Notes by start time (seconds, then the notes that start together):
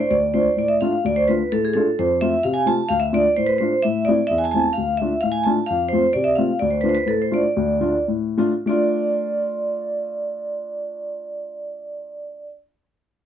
0.00 C5
0.10 D2 D5
0.34 A3 D4 F4 C5
0.57 A2 D5
0.68 E5
0.81 A3 D4 F4 F5
1.05 D2 D5
1.16 C5
1.28 A3 D4 F4 B4
1.52 A2 A4
1.65 G#4
1.73 A3 D4 F4 A4
1.99 F2 C5
2.21 A3 C4 F4 E5
2.43 C3 F5
2.54 G#5
2.66 A3 C4 F4 A5
2.89 D2 F5
3.00 E5
3.13 A3 D4 F4 D5
3.37 A2 C5
3.47 B4
3.58 A3 D4 F4 C5
3.83 A2 E5
4.05 A3 C4 E4 D5
4.27 E2 E5
4.38 G#5
4.44 G#5 A5
4.51 A3 C4 E4 A5
4.73 F5
4.78 D2
4.97 A3 D4 E5
5.02 F4
5.21 A2 F5
5.32 G#5
5.44 A3 D4 F4 A5
5.66 F2 F5
5.89 C5
5.93 A3 C4 F4
6.13 C3 D5
6.24 E5
6.36 A3 C4 F4 F5
6.59 D2 D5
6.71 C5
6.81 A3 D4 F4 B4
6.89 C5
6.95 B4
7.06 A2 A4
7.22 C5
7.31 A3 D4 F4 D5
7.57 D2
7.81 A3 D4 F4
8.08 A2
8.37 A3 D4 F4
8.66 A3 D4 F4 D5